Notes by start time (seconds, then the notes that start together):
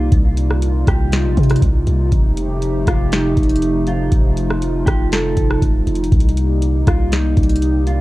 Already playing: C3 G3 A#3 D#4 F4 G4
0.12 C2 F4, kick, closed hi-hat
0.37 closed hi-hat
0.51 cross-stick
0.62 closed hi-hat
0.87 C2 G4, kick, cross-stick, closed hi-hat
1.12 D#4, snare, closed hi-hat
1.24 A#1
1.37 C3, kick, closed hi-hat
1.43 closed hi-hat
1.50 cross-stick, closed hi-hat
1.56 closed hi-hat
1.62 C2, kick, closed hi-hat
1.87 C2, closed hi-hat
2.12 F1 F3 A3 G4, kick, closed hi-hat
2.37 closed hi-hat
2.62 closed hi-hat
2.87 F1 F4, kick, cross-stick, closed hi-hat
3.12 D#4, snare, closed hi-hat
3.37 F1, kick, closed hi-hat
3.43 closed hi-hat
3.49 closed hi-hat
3.56 closed hi-hat
3.62 closed hi-hat
3.87 F4, closed hi-hat
4.12 F1 F4, kick, closed hi-hat
4.37 closed hi-hat
4.50 cross-stick
4.62 closed hi-hat
4.86 F1 G4, kick, cross-stick, closed hi-hat
5.12 A4, snare, closed hi-hat
5.37 F1, kick, closed hi-hat
5.51 cross-stick
5.62 F1, kick, closed hi-hat
5.87 F1, closed hi-hat
5.95 closed hi-hat
6.04 closed hi-hat
6.12 C2 G3 A#3 G4, kick, closed hi-hat
6.20 closed hi-hat
6.29 closed hi-hat
6.37 closed hi-hat
6.62 closed hi-hat
6.87 C2 F4, kick, cross-stick, closed hi-hat
7.12 D#4, snare, closed hi-hat
7.37 C2, kick, closed hi-hat
7.43 closed hi-hat
7.49 closed hi-hat
7.56 closed hi-hat
7.62 closed hi-hat
7.87 F4, closed hi-hat